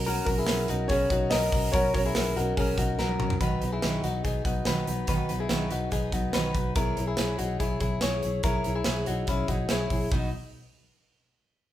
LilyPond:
<<
  \new Staff \with { instrumentName = "Upright piano" } { \time 4/4 \key b \major \tempo 4 = 143 r8 ais'4. cis''4 dis''4 | cis''8 cis''8 ais'8 ais'8 ais'4 r4 | r1 | r1 |
r1 | r1 | r1 | }
  \new Staff \with { instrumentName = "Clean electric guitar" } { \time 4/4 \key b \major <fis' ais'>8. <e' gis'>8. <dis' fis'>8 <cis' gis'>8 <dis' fis'>8 <fis' ais'>4 | <fis' ais'>8. <e' gis'>8. <dis' fis'>8 <cis' gis'>8 <dis' fis'>8 <fis' ais'>4 | <fis' b'>8. <e' gis'>8. <dis' fis'>8 <dis' gis'>8 <dis' fis'>8 <fis' b'>4 | <fis' b'>8. <e' gis'>8. <dis' fis'>8 <dis' gis'>8 <dis' fis'>8 <fis' b'>4 |
<e' ais'>8. <e' gis'>8. <dis' fis'>8 <e' gis'>8 <e' gis'>8 <gis' cis''>4 | <e' ais'>8. <e' gis'>8. <dis' fis'>8 <cis' e'>8 <dis' fis'>8 <e' gis'>4 | dis'8 r2. r8 | }
  \new Staff \with { instrumentName = "Steel-string acoustic guitar" } { \time 4/4 \key b \major <b cis' fis' ais'>8 <cis' fis' ais'>8 <b cis' fis' ais'>8 <cis' fis' ais'>8 <b cis' fis' ais'>8 <cis' fis' ais'>8 <b cis' fis' ais'>8 <cis' fis' ais'>8 | <b cis' fis' ais'>8 <cis' fis' ais'>8 <b cis' fis' ais'>8 <cis' fis' ais'>8 <b cis' fis' ais'>8 <cis' fis' ais'>8 <b cis' fis' ais'>8 <cis' fis' ais'>8 | <b, dis fis b dis' b'>8 <fis b dis' b'>8 <b, dis fis b dis' b'>8 <fis b dis' b'>8 <fis b dis' b'>8 <fis b dis' b'>8 <b, dis fis b dis' b'>8 <fis b dis' b'>8 | <b, dis fis b dis' b'>8 <fis b dis' b'>8 <b, dis fis b dis' b'>8 <fis b dis' b'>8 <fis b dis' b'>8 <fis b dis' b'>8 <b, dis fis b dis' b'>8 <fis b dis' b'>8 |
<b e' gis' cis''>8 <e' gis' cis''>8 <b e' gis' cis''>8 <e' gis' cis''>8 <b e' gis' cis''>8 <e' gis' cis''>8 <b e' gis' cis''>8 <e' gis' cis''>8 | <b e' gis' cis''>8 <e' gis' cis''>8 <b e' gis' cis''>8 <e' gis' cis''>8 <b e' gis' cis''>8 <e' gis' cis''>8 <b e' gis' cis''>8 <e' gis' cis''>8 | <b, fis b dis' fis' b'>8 r2. r8 | }
  \new Staff \with { instrumentName = "Fingered electric bass" } { \clef bass \time 4/4 \key b \major b,,8 b,,8 b,,8 b,,8 b,,8 b,,8 b,,8 b,,8 | b,,8 b,,8 b,,8 b,,8 b,,8 b,,8 b,,8 b,,8 | b,,8 b,,8 b,,8 b,,8 b,,8 b,,8 b,,8 b,,8 | b,,8 b,,8 b,,8 b,,8 b,,8 b,,8 b,,8 b,,8 |
b,,8 b,,8 b,,8 b,,8 b,,8 b,,8 b,,8 b,,8 | b,,8 b,,8 b,,8 b,,8 b,,8 b,,8 b,,8 b,,8 | b,,8 r2. r8 | }
  \new DrumStaff \with { instrumentName = "Drums" } \drummode { \time 4/4 <hho hhp>8 <hho hhp bd>8 <hho hhp sn>8 <hho hhp>8 <hho hhp bd>8 <hho hhp bd>8 <hho hhp sn>8 <hho hhp bd>8 | <hho hhp bd>8 <hho hhp bd>8 <hho hhp sn>8 <hho hhp>8 <hho hhp bd>8 <hho hhp bd>8 sn16 tommh16 toml16 tomfh16 | <hh bd>8 hh8 <hh sn>8 hh8 <hh bd>8 <hh bd>8 <hh sn>8 hh8 | <hh bd>8 hh8 <hh sn>8 hh8 <hh bd>8 <hh bd>8 <hh sn>8 <hh bd>8 |
<hh bd>8 hh8 <hh sn>8 hh8 <hh bd>8 <hh bd>8 <hh sn>8 hh8 | <hh bd>8 hh8 <hh sn>8 hh8 <hh bd>8 <hh bd>8 <hh sn>8 <hho bd>8 | bd4 r4 r4 r4 | }
>>